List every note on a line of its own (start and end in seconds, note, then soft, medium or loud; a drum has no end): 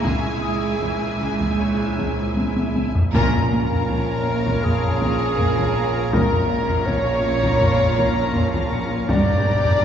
0.00 3.10 A#1 medium
0.00 0.27 C#3 medium
0.00 2.89 E5 soft
0.00 2.71 G#5 medium
0.00 0.71 C#6 soft
0.00 0.41 D#6 soft
0.00 1.16 D#6 medium
0.04 2.90 C#2 medium
0.04 2.37 G#3 medium
0.04 2.90 E4 soft
0.04 3.11 G#4 medium
0.04 2.34 G#4 soft
0.04 3.11 E5 medium
0.04 2.90 G#5 soft
0.04 taiko medium
0.42 0.66 C#4 soft
0.42 3.16 D#6 soft
0.71 1.94 D6 soft
0.81 1.05 C#4 soft
0.81 taiko medium
1.20 1.43 C#3 soft
1.40 taiko medium
1.59 1.83 C#3 soft
1.59 5.50 C#5 soft
1.59 5.50 C#6 soft
1.98 2.21 C#4 soft
1.98 taiko medium
2.37 2.60 C#3 soft
2.37 taiko high medium
2.56 taiko high medium
2.76 2.99 C#3 soft
2.76 taiko high medium
2.95 taiko low medium
3.13 6.09 A#1 medium
3.13 3.36 A#2 medium
3.13 6.09 A#2 medium
3.13 4.23 A#2 medium
3.13 6.09 C#4 medium
3.13 6.09 F4 medium
3.13 4.60 A#4 medium
3.13 6.10 A#4 medium
3.13 4.65 A#4 medium
3.13 6.10 C#5 medium
3.13 6.10 F5 medium
3.13 7.04 G#5 soft
3.13 6.10 A#5 medium
3.13 taiko medium
3.33 taiko low soft
3.51 3.74 A#3 soft
3.71 taiko low soft
3.89 4.12 A#3 soft
3.89 taiko medium
4.26 4.49 A#2 medium
4.46 taiko medium
4.63 4.86 A#2 soft
4.63 6.12 G#4 medium
4.63 6.13 G#4 medium
4.63 taiko low medium
4.84 taiko low soft
5.01 5.24 A#3 soft
5.01 taiko medium
5.38 5.60 A#2 medium
5.38 taiko low medium
5.57 taiko medium
5.76 5.98 A#2 soft
6.11 9.05 A#1 medium
6.11 9.06 A#1 medium
6.11 6.35 A#2 medium
6.11 9.05 A#2 medium
6.11 9.05 C#4 soft
6.11 9.05 F4 medium
6.11 9.05 A#4 medium
6.11 6.85 A#4 medium
6.11 6.88 A#4 medium
6.11 9.05 C#5 medium
6.11 9.04 F5 medium
6.11 9.05 A#5 medium
6.11 taiko loud
6.32 taiko low soft
6.51 6.73 A#3 soft
6.70 taiko low soft
6.86 7.10 A#3 soft
6.86 8.72 C#5 medium
6.86 taiko medium
7.24 7.46 A#2 medium
7.43 taiko medium
7.61 7.83 A#2 soft
7.61 taiko low medium
7.80 taiko low soft
7.98 8.20 A#3 medium
7.98 taiko medium
8.34 8.57 A#2 medium
8.34 taiko low medium
8.54 taiko medium
8.71 8.94 A#2 soft
8.71 9.85 C#7 soft
9.07 9.85 G1 medium
9.07 9.85 A#1 medium
9.07 9.85 G2 medium
9.07 9.31 G2 medium
9.07 9.85 D4 medium
9.07 9.85 G4 medium
9.07 9.85 A#4 medium
9.07 9.85 D5 medium
9.07 9.85 D5 loud
9.07 9.85 G5 medium
9.07 9.85 A#5 medium
9.07 9.85 G6 medium
9.07 9.85 A#6 medium
9.07 taiko medium
9.27 taiko low soft
9.45 9.67 G3 medium
9.64 taiko low medium